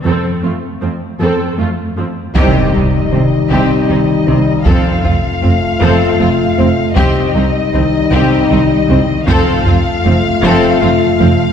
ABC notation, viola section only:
X:1
M:6/8
L:1/8
Q:3/8=52
K:Cdor
V:1 name="Viola section"
[CA] [A,F] [F,C] [CA] [A,F] [F,C] | C C C C C C | C C C C C C | C C C C C C |
C C C C C C |]